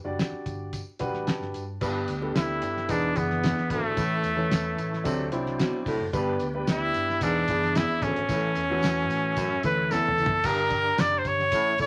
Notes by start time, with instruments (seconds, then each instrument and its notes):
0.04 fingered electric bass F#1, grand piano G3 D4 F#4 D5
0.19 snare, closed hi-hat, tambourine
0.31 muted fingered electric bass stroke
0.46 fingered electric bass G1, kick, closed hi-hat, tambourine
0.73 kick, closed hi-hat, tambourine
0.99 fingered electric bass B1, grand piano G3 D4 F#4 B4 F#5, kick, closed hi-hat, tambourine
1.13 fingered electric bass A1, snare
1.26 grand piano A5, muted fingered electric bass stroke, snare, closed hi-hat, tambourine
1.40 fingered electric bass G1, snare
1.54 fingered electric bass G2, closed hi-hat, tambourine
1.80 fingered electric bass G1, baritone saxophone G2, grand piano G3 B3 D4 B4, tonewheel organ D4 G4 B4, kick, crash, tambourine
2.08 fingered electric bass D2, closed hi-hat, tambourine
2.22 grand piano G3 B3 D4 A4
2.35 fingered electric bass D2, trumpet E4, snare, closed hi-hat, tambourine
2.62 fingered electric bass G2, closed hi-hat, tambourine
2.77 snare
2.88 fingered electric bass E1, baritone saxophone G#2, grand piano E3 B3 D4 G#4, trumpet D4, tonewheel organ E4 G#4 D5, kick, closed hi-hat, tambourine
3.15 fingered electric bass F#1, grand piano E3 B3 D4 G#4, trumpet B3, kick, closed hi-hat, tambourine
3.30 snare
3.43 baritone saxophone E2, snare, closed hi-hat, tambourine
3.58 snare
3.70 fingered electric bass G#1, baritone saxophone D2, trumpet A3, kick, closed hi-hat, tambourine
3.83 fingered electric bass G#1
3.96 fingered electric bass A1, baritone saxophone A2, grand piano E3 A3 C#4 A4, tonewheel organ E4 A4 C#5, kick, closed hi-hat, tambourine
4.23 fingered electric bass E2, closed hi-hat, tambourine
4.36 grand piano E3 A3 C#4 A4
4.50 fingered electric bass E2, snare, closed hi-hat, tambourine
4.77 fingered electric bass A2, closed hi-hat, tambourine
4.93 snare
5.04 fingered electric bass D2, baritone saxophone C3, grand piano F#3 C4 D4 A4, tonewheel organ F#4 C5 D5, kick, closed hi-hat, tambourine
5.31 fingered electric bass C2, grand piano F#3 C4 D4 E4, closed hi-hat, tambourine
5.46 snare
5.59 baritone saxophone B2, snare, closed hi-hat, tambourine
5.86 fingered electric bass C2, baritone saxophone A2, kick, open hi-hat, tambourine
5.99 fingered electric bass F#1
6.13 fingered electric bass G1, baritone saxophone G2, grand piano G3 B3 D4 B4, tonewheel organ G4 B4, kick, closed hi-hat, tambourine
6.39 fingered electric bass D2, closed hi-hat, tambourine
6.54 grand piano G3 B3 D4 B4
6.67 fingered electric bass D2, trumpet E4, snare, closed hi-hat, tambourine
6.94 fingered electric bass G2, closed hi-hat, tambourine
7.09 snare
7.20 fingered electric bass E1, baritone saxophone G#2, grand piano E3 B3 D4 G#4, trumpet D4, tonewheel organ G#4 D5 E5, kick, closed hi-hat, tambourine
7.48 fingered electric bass F#1, grand piano E3 B3 D4 G#4, kick, closed hi-hat, tambourine
7.62 snare
7.75 baritone saxophone E2, trumpet E4, snare, closed hi-hat, tambourine
8.02 fingered electric bass G#1, baritone saxophone D2, trumpet C#4, kick, closed hi-hat, tambourine
8.16 fingered electric bass G#1, closed hi-hat
8.27 fingered electric bass A1, baritone saxophone A2, grand piano E3 A3 C#4 A4, tonewheel organ A4 C#5 E5, kick, closed hi-hat, tambourine
8.55 fingered electric bass E2, closed hi-hat, tambourine
8.70 grand piano E3 A3 C#4 F#4
8.82 fingered electric bass E2, snare, closed hi-hat, tambourine
9.08 fingered electric bass A2, closed hi-hat, tambourine
9.36 baritone saxophone F#2, kick, closed hi-hat, tambourine
9.63 fingered electric bass D2, grand piano E3 A3 C#4 A4, trumpet B4, kick, closed hi-hat, tambourine
9.91 baritone saxophone E2, trumpet A4, snare, tambourine
10.08 mid tom
10.17 fingered electric bass C#2, baritone saxophone E2, tambourine
10.26 floor tom
10.31 fingered electric bass F#1
10.44 fingered electric bass G1, baritone saxophone G2, tonewheel organ A#3 D4 G4, grand piano D4 G4 A#4, trumpet A#4, kick, crash, tambourine
10.70 kick, closed hi-hat, tambourine
10.98 fingered electric bass F#1, trumpet D5, snare, closed hi-hat, tambourine
11.18 trumpet C5
11.25 fingered electric bass G1, trumpet C#5, kick, closed hi-hat, tambourine
11.39 snare
11.52 fingered electric bass A1, baritone saxophone A2, tonewheel organ A3 C#4 E4, grand piano C#4 E4 A4, kick, closed hi-hat, tambourine
11.78 fingered electric bass B1, grand piano C#4 E4 A4, trumpet C#5, kick, closed hi-hat, tambourine